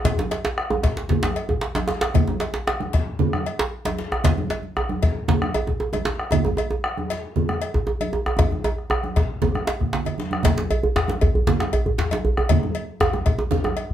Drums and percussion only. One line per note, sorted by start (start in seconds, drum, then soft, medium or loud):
0.05 bombo rim soft
0.05 bombo low loud
0.05 cowbell medium
0.05 djembe slap medium
0.05 djembe bass medium
0.05 low conga medium
0.18 djembe slap soft
0.18 djembe slap medium
0.18 djembe tone medium
0.18 high conga medium
0.31 bombo rim soft
0.31 cowbell medium
0.31 djembe slap medium
0.45 bombo rim soft
0.45 djembe slap loud
0.58 bombo rim medium
0.70 djembe tone medium
0.70 high conga medium
0.70 djembe tone medium
0.83 bombo low loud
0.83 cowbell medium
0.83 djembe slap medium
0.97 djembe slap medium
1.09 djembe slap medium
1.09 djembe bass medium
1.09 low conga medium
1.23 bombo rim medium
1.23 djembe slap loud
1.23 djembe slap soft
1.23 djembe tone medium
1.23 high conga soft
1.36 bombo rim soft
1.36 cowbell soft
1.49 bombo rim soft
1.49 bombo low medium
1.49 djembe tone medium
1.61 bombo rim soft
1.61 djembe slap medium
1.75 bombo rim soft
1.75 cowbell soft
1.75 djembe slap medium
1.75 djembe slap soft
1.75 high conga medium
1.75 djembe tone medium
1.88 bombo rim soft
1.88 djembe slap medium
2.01 bombo rim medium
2.01 djembe slap loud
2.01 high conga soft
2.14 bombo rim soft
2.14 bombo low loud
2.14 cowbell medium
2.14 djembe slap soft
2.14 low conga medium
2.14 djembe bass medium
2.27 djembe slap soft
2.27 djembe tone medium
2.27 high conga medium
2.40 bombo rim soft
2.40 cowbell soft
2.40 djembe slap medium
2.54 djembe slap medium
2.54 high conga soft
2.67 bombo rim loud
2.67 djembe slap medium
2.67 djembe slap soft
2.67 high conga soft
2.80 bombo rim soft
2.80 high conga medium
2.80 djembe tone medium
2.93 bombo low loud
2.93 cowbell soft
2.93 djembe slap medium
3.07 high conga soft
3.19 high conga soft
3.19 low conga medium
3.19 djembe bass medium
3.33 bombo rim medium
3.33 djembe tone medium
3.33 high conga medium
3.46 cowbell soft
3.46 high conga soft
3.59 djembe slap loud
3.73 djembe slap soft
3.85 cowbell soft
3.85 djembe slap medium
3.85 high conga medium
3.85 djembe tone medium
3.99 djembe slap medium
3.99 high conga soft
4.12 bombo rim medium
4.12 djembe tone medium
4.24 bombo rim soft
4.24 bombo low loud
4.24 cowbell medium
4.24 djembe slap soft
4.24 djembe slap loud
4.24 low conga medium
4.24 djembe bass medium
4.37 djembe slap soft
4.37 high conga medium
4.37 djembe tone medium
4.50 cowbell medium
4.50 djembe slap medium
4.63 high conga soft
4.76 bombo rim loud
4.76 high conga soft
4.76 djembe tone medium
4.89 bombo rim soft
4.89 high conga medium
4.89 djembe tone medium
5.03 bombo low loud
5.03 cowbell medium
5.03 djembe slap medium
5.15 high conga soft
5.28 djembe slap loud
5.28 high conga soft
5.28 low conga medium
5.28 djembe bass medium
5.42 bombo rim medium
5.42 high conga medium
5.42 djembe tone medium
5.54 cowbell medium
5.54 djembe tone medium
5.54 high conga soft
5.67 bombo low medium
5.67 djembe tone medium
5.80 djembe slap soft
5.80 djembe tone medium
5.93 cowbell medium
5.93 djembe tone medium
5.93 high conga medium
5.94 djembe tone medium
6.05 djembe slap loud
6.05 djembe slap medium
6.05 high conga soft
6.20 bombo rim medium
6.31 bombo low loud
6.31 cowbell medium
6.31 djembe slap soft
6.31 djembe tone medium
6.31 djembe bass medium
6.31 low conga medium
6.45 djembe slap soft
6.45 djembe tone medium
6.45 high conga medium
6.47 djembe tone medium
6.57 cowbell medium
6.57 djembe tone medium
6.70 djembe tone medium
6.70 high conga soft
6.84 bombo rim medium
6.84 djembe slap soft
6.84 high conga soft
6.97 bombo rim soft
6.97 high conga medium
6.97 djembe tone soft
7.10 cowbell medium
7.10 djembe slap medium
7.23 high conga soft
7.36 high conga soft
7.36 low conga medium
7.36 djembe bass medium
7.49 bombo rim medium
7.49 high conga medium
7.49 djembe tone medium
7.62 cowbell medium
7.62 high conga soft
7.74 bombo low medium
7.74 djembe tone medium
7.87 djembe slap soft
7.87 djembe tone medium
8.01 cowbell medium
8.01 high conga medium
8.01 djembe tone medium
8.13 djembe tone medium
8.13 high conga soft
8.26 bombo rim medium
8.26 djembe tone medium
8.39 bombo low loud
8.39 cowbell medium
8.39 djembe slap soft
8.39 djembe tone loud
8.39 high conga soft
8.39 djembe bass medium
8.39 low conga medium
8.51 bombo rim soft
8.51 high conga medium
8.51 djembe tone medium
8.64 cowbell medium
8.64 djembe tone loud
8.64 high conga soft
8.78 bombo rim soft
8.90 bombo rim loud
8.90 djembe tone loud
8.90 high conga soft
9.03 bombo rim soft
9.03 high conga medium
9.03 djembe tone medium
9.16 bombo rim soft
9.16 bombo low loud
9.16 cowbell soft
9.16 djembe slap medium
9.16 djembe tone medium
9.29 high conga soft
9.42 bombo rim soft
9.42 high conga soft
9.42 djembe tone medium
9.42 djembe bass medium
9.42 low conga medium
9.55 bombo rim medium
9.55 high conga medium
9.55 djembe tone medium
9.67 cowbell soft
9.67 djembe slap loud
9.67 djembe slap soft
9.80 bombo rim soft
9.80 bombo low medium
9.80 djembe slap soft
9.80 low conga soft
9.93 djembe slap loud
9.93 low conga soft
10.05 bombo rim soft
10.05 cowbell soft
10.05 djembe tone medium
10.05 low conga medium
10.18 bombo rim soft
10.18 djembe slap medium
10.18 high conga medium
10.31 bombo rim medium
10.31 djembe slap soft
10.31 high conga medium
10.43 bombo low loud
10.43 cowbell medium
10.43 djembe slap medium
10.43 djembe slap loud
10.43 low conga medium
10.43 djembe bass medium
10.57 djembe slap medium
10.57 high conga medium
10.57 djembe tone medium
10.70 cowbell medium
10.70 djembe bass medium
10.83 djembe bass medium
10.96 bombo rim medium
10.96 djembe slap medium
10.96 djembe bass medium
11.08 bombo rim soft
11.08 djembe slap medium
11.08 high conga medium
11.08 djembe tone medium
11.21 bombo low loud
11.21 cowbell medium
11.21 djembe slap soft
11.21 high conga soft
11.21 djembe bass medium
11.35 high conga soft
11.35 djembe bass medium
11.47 bombo rim soft
11.47 djembe slap medium
11.47 djembe slap loud
11.47 high conga soft
11.47 djembe bass medium
11.47 low conga medium
11.60 bombo rim medium
11.60 djembe slap soft
11.60 djembe slap medium
11.60 djembe tone medium
11.60 high conga soft
11.73 cowbell medium
11.73 high conga soft
11.73 djembe bass medium
11.86 bombo low medium
11.86 djembe bass medium
11.98 djembe slap medium
11.98 djembe slap loud
11.98 high conga soft
11.98 djembe bass medium
12.11 cowbell medium
12.11 djembe slap medium
12.11 high conga medium
12.11 djembe tone medium
12.25 djembe bass medium
12.37 bombo rim medium
12.37 djembe bass medium
12.49 bombo low loud
12.49 cowbell medium
12.49 djembe slap medium
12.49 djembe bass medium
12.49 low conga medium
12.63 djembe tone medium
12.63 high conga medium
12.75 cowbell medium
12.88 djembe slap soft
13.00 bombo rim loud
13.00 djembe slap medium
13.00 djembe tone loud
13.00 djembe bass medium
13.13 bombo rim soft
13.13 djembe tone medium
13.13 high conga medium
13.13 djembe tone medium
13.26 bombo low loud
13.26 cowbell medium
13.26 djembe slap soft
13.26 djembe tone medium
13.26 high conga soft
13.38 djembe tone medium
13.38 high conga soft
13.51 bombo rim soft
13.51 djembe slap medium
13.51 high conga soft
13.51 djembe tone medium
13.51 low conga medium
13.51 djembe bass medium
13.64 bombo rim medium
13.64 djembe slap soft
13.64 djembe tone medium
13.64 high conga medium
13.64 djembe tone medium
13.77 cowbell medium
13.77 high conga soft
13.90 bombo low medium